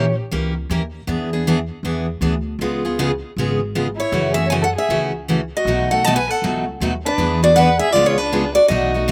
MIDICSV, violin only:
0, 0, Header, 1, 2, 480
1, 0, Start_track
1, 0, Tempo, 381194
1, 1356, Time_signature, 4, 2, 24, 8
1, 11478, End_track
2, 0, Start_track
2, 0, Title_t, "Violin"
2, 0, Program_c, 0, 40
2, 0, Note_on_c, 0, 67, 81
2, 165, Note_off_c, 0, 67, 0
2, 4991, Note_on_c, 0, 64, 68
2, 5437, Note_off_c, 0, 64, 0
2, 5445, Note_on_c, 0, 68, 63
2, 5608, Note_off_c, 0, 68, 0
2, 5615, Note_on_c, 0, 73, 83
2, 5703, Note_off_c, 0, 73, 0
2, 5817, Note_on_c, 0, 69, 75
2, 5994, Note_on_c, 0, 68, 67
2, 6013, Note_off_c, 0, 69, 0
2, 6260, Note_off_c, 0, 68, 0
2, 7010, Note_on_c, 0, 66, 75
2, 7425, Note_off_c, 0, 66, 0
2, 7463, Note_on_c, 0, 69, 67
2, 7630, Note_on_c, 0, 75, 91
2, 7649, Note_off_c, 0, 69, 0
2, 7767, Note_off_c, 0, 75, 0
2, 7775, Note_on_c, 0, 71, 81
2, 7936, Note_on_c, 0, 69, 69
2, 7955, Note_off_c, 0, 71, 0
2, 8189, Note_off_c, 0, 69, 0
2, 8887, Note_on_c, 0, 62, 78
2, 9320, Note_off_c, 0, 62, 0
2, 9364, Note_on_c, 0, 66, 72
2, 9512, Note_off_c, 0, 66, 0
2, 9519, Note_on_c, 0, 71, 86
2, 9796, Note_off_c, 0, 71, 0
2, 9829, Note_on_c, 0, 68, 85
2, 9992, Note_on_c, 0, 65, 75
2, 10010, Note_off_c, 0, 68, 0
2, 10155, Note_off_c, 0, 65, 0
2, 10169, Note_on_c, 0, 65, 75
2, 10329, Note_on_c, 0, 62, 82
2, 10348, Note_off_c, 0, 65, 0
2, 10759, Note_off_c, 0, 62, 0
2, 10766, Note_on_c, 0, 66, 72
2, 10922, Note_off_c, 0, 66, 0
2, 10929, Note_on_c, 0, 66, 78
2, 11478, Note_off_c, 0, 66, 0
2, 11478, End_track
0, 0, End_of_file